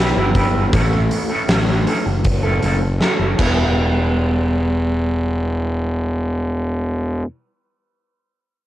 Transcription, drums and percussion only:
0.35 kick, open hi-hat
0.73 kick, open hi-hat
1.11 open hi-hat
1.49 snare, open hi-hat
1.87 open hi-hat
2.25 kick, open hi-hat
2.62 open hi-hat
3.01 snare
3.39 kick, crash

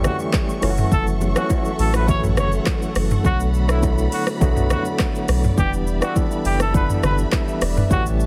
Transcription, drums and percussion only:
0.04 cross-stick, low bongo, low conga, shaker
0.19 shaker
0.33 kick, cross-stick, clap, high bongo, shaker
0.49 shaker
0.62 cross-stick, open hi-hat, shaker
0.77 mid tom, shaker
0.92 kick, low conga, shaker
1.07 shaker
1.21 low bongo, shaker
1.36 cross-stick, low bongo, shaker
1.50 kick, high bongo, shaker
1.65 shaker
1.79 open hi-hat, shaker
1.94 cross-stick, high bongo, shaker
2.08 kick, low bongo, low conga, shaker
2.24 mid tom, shaker
2.37 cross-stick, low bongo, low conga, shaker
2.52 shaker
2.66 kick, cross-stick, clap, high bongo, shaker
2.82 shaker
2.95 cross-stick, open hi-hat, shaker
3.10 mid tom, shaker
3.25 kick, low conga, shaker
3.40 shaker
3.54 shaker
3.69 cross-stick, shaker
3.83 kick, high bongo, shaker
3.98 shaker
4.12 open hi-hat, shaker
4.27 cross-stick, high bongo, shaker
4.41 kick, low bongo, low conga, shaker
4.57 mid tom, shaker
4.70 cross-stick, low bongo, low conga, shaker
4.85 shaker
4.99 kick, cross-stick, clap, high bongo, shaker
5.15 shaker
5.28 cross-stick, open hi-hat, shaker
5.43 mid tom, shaker
5.58 kick, low conga, shaker
5.73 shaker
5.87 shaker
6.02 cross-stick, shaker
6.16 kick, high bongo, shaker
6.31 shaker
6.45 open hi-hat, shaker
6.60 cross-stick, high bongo, shaker
6.74 kick, low bongo, low conga, shaker
6.90 mid tom, shaker
7.03 cross-stick, low bongo, low conga, shaker
7.18 shaker
7.32 kick, cross-stick, clap, high bongo, shaker
7.48 shaker
7.61 cross-stick, open hi-hat, shaker
7.76 mid tom, shaker
7.91 kick, low conga, shaker
8.06 shaker
8.20 shaker

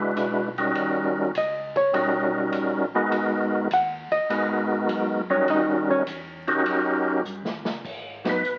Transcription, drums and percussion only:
0.17 kick, hi-hat pedal, ride
0.58 ride
0.75 kick, ride
1.35 kick, hi-hat pedal, ride
1.76 kick, ride
1.94 kick, ride
2.52 kick, hi-hat pedal, ride
3.12 kick, ride
3.71 kick, hi-hat pedal, ride
4.12 ride
4.30 kick, ride
4.89 kick, hi-hat pedal, ride
5.48 kick, ride
6.07 kick, hi-hat pedal, ride
6.48 ride
6.66 kick, ride
7.25 hi-hat pedal
7.45 snare
7.65 snare
7.85 kick, crash
8.25 snare, ride
8.44 hi-hat pedal

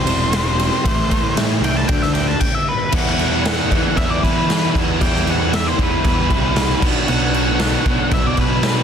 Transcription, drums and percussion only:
0.07 ride
0.33 snare, ride
0.59 ride
0.85 kick, ride
1.11 kick, ride
1.37 snare, ride
1.64 ride
1.89 kick, ride
2.03 snare
2.15 ride
2.41 kick, crash
2.92 kick, crash
3.07 snare
3.19 crash
3.45 snare, crash
3.71 kick, crash
3.97 kick, crash
4.23 kick, crash
4.50 snare, crash
4.75 kick, crash
5.01 kick, crash
5.16 snare
5.27 crash
5.53 snare, crash
5.79 kick, crash
6.05 kick, crash
6.30 kick, crash
6.56 snare, crash
6.82 kick, crash
7.08 crash
7.34 crash
7.59 snare, crash
7.86 kick, crash
8.11 kick, crash
8.37 kick, crash
8.63 snare, crash

